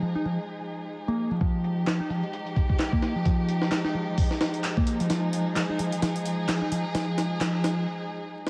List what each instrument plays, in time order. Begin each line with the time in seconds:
Already playing: string section F3 G#3 D#4 G#4
0.02 picked electric bass F3
0.15 picked electric bass D#4
0.25 picked electric bass F3
1.08 picked electric bass A#3
1.31 picked electric bass F3
1.41 picked electric bass F3, string section F3 G#3 D#4 G4, kick, closed hi-hat
1.64 closed hi-hat
1.87 picked electric bass F3, snare, clap, closed hi-hat
2.00 picked electric bass D#4
2.10 picked electric bass F3, closed hi-hat
2.23 closed hi-hat
2.33 closed hi-hat
2.47 closed hi-hat
2.56 kick, closed hi-hat
2.69 kick
2.79 snare, clap, closed hi-hat
2.92 picked electric bass A#3, kick
3.02 snare, closed hi-hat
3.16 picked electric bass F3
3.25 picked electric bass F3, kick, closed hi-hat
3.49 closed hi-hat
3.62 snare
3.71 picked electric bass F3, snare, clap, closed hi-hat
3.85 picked electric bass D#4, snare
3.95 picked electric bass F3
4.18 kick, open hi-hat
4.31 snare
4.41 snare, closed hi-hat
4.54 closed hi-hat
4.64 clap, closed hi-hat
4.77 picked electric bass A#3, kick
4.87 closed hi-hat
5.00 picked electric bass F3, closed hi-hat
5.10 picked electric bass F3, string section G#4, snare, closed hi-hat
5.33 closed hi-hat
5.56 picked electric bass F3, snare, clap, closed hi-hat
5.70 picked electric bass D#4
5.79 picked electric bass F3, closed hi-hat
5.92 closed hi-hat
6.02 picked electric bass F3, snare, closed hi-hat
6.16 closed hi-hat
6.25 closed hi-hat
6.48 picked electric bass F3, snare, clap, closed hi-hat
6.62 picked electric bass D#4
6.72 picked electric bass F3, closed hi-hat
6.95 picked electric bass F3, snare, closed hi-hat
7.18 snare, closed hi-hat
7.41 picked electric bass F3, snare, clap, closed hi-hat
7.64 snare, closed hi-hat
8.47 snare